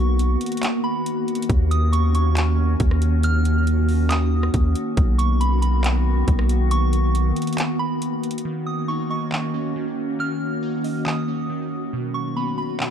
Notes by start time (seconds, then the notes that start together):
Already playing: B1 D#3 A#3 B3 F#4 C#6
0.19 closed hi-hat
0.41 closed hi-hat
0.46 closed hi-hat
0.52 closed hi-hat
0.57 closed hi-hat
0.63 clap, closed hi-hat
0.84 B5
1.06 closed hi-hat
1.28 closed hi-hat
1.35 closed hi-hat
1.42 closed hi-hat
1.50 D#2 C#4, kick, closed hi-hat
1.71 D#6, closed hi-hat
1.93 C#6, closed hi-hat
2.15 C#6, closed hi-hat
2.37 clap, closed hi-hat
2.80 D#2, kick, closed hi-hat
2.91 cross-stick
3.02 closed hi-hat
3.23 F6, closed hi-hat
3.45 closed hi-hat
3.67 closed hi-hat
3.89 open hi-hat
4.10 D#6, clap, closed hi-hat
4.43 cross-stick
4.54 D#2, kick, closed hi-hat
4.75 closed hi-hat
4.97 B1 D#3 A#3 B3 F#4, kick, closed hi-hat
5.18 C#6, closed hi-hat
5.41 B5, closed hi-hat
5.62 B5, closed hi-hat
5.84 clap, closed hi-hat
6.28 B1, kick, closed hi-hat
6.39 cross-stick
6.49 closed hi-hat
6.71 C#6, closed hi-hat
6.93 closed hi-hat
7.15 closed hi-hat
7.36 closed hi-hat
7.42 closed hi-hat
7.47 closed hi-hat
7.53 closed hi-hat
7.58 clap, closed hi-hat
7.79 B5
8.02 closed hi-hat
8.23 closed hi-hat
8.31 closed hi-hat
8.38 closed hi-hat
8.45 D#3 A#3 C#4 F#4
8.66 D#6
8.88 D#4 C#6
9.10 D#5 C#6
9.32 D#3, clap
9.54 C#4
9.76 D#3
10.19 D#3 F6
10.63 D#4
10.84 D#5, open hi-hat
11.05 D#3 D#6, clap
11.28 C#4
11.50 D#3
11.93 B2 F#3
12.14 C#6
12.37 B3 B5
12.58 B5
12.80 B2, clap